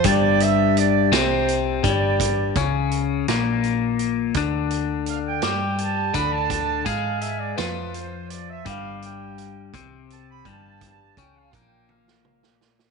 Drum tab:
HH |x-x-x-x-x-x-|x-x-x-x-x-x-|x-x-x-x-x-x-|x-x-x-x-x-x-|
SD |------o-----|------o-----|------o-----|------o-----|
T1 |------------|------------|------------|------------|
T2 |------------|------------|------------|------------|
BD |o---------o-|o-o---------|o---------o-|o-o---------|

HH |x-x-x-x-x-x-|x-x-x-------|
SD |------------|-------o-ooo|
T1 |------------|------o-----|
T2 |------------|--------o---|
BD |o-----o---o-|o-o-o-------|